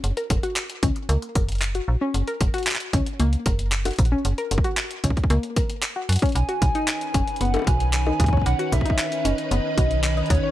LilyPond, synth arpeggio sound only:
\new Staff \with { instrumentName = "Synth arpeggio sound" } { \time 4/4 \key b \major \tempo 4 = 114 r16 ais'16 r16 fis'16 r8 cis'16 r16 ais16 r16 ais'16 r8 fis'16 r16 cis'16 | r16 ais'16 r16 fis'16 r8 cis'16 r16 ais16 r16 ais'16 r8 fis'16 r16 cis'16 | r16 ais'16 r16 fis'16 r8 cis'16 r16 ais16 r16 ais'16 r8 fis'16 r16 cis'16 | r16 fis'16 r16 dis'16 r8 cis'16 r16 b16 r16 fis'16 r8 dis'16 r16 cis''16 |
r16 fis'16 r16 dis'16 r8 cis'16 r16 b16 r16 fis'16 r8 dis'16 r16 cis''16 | }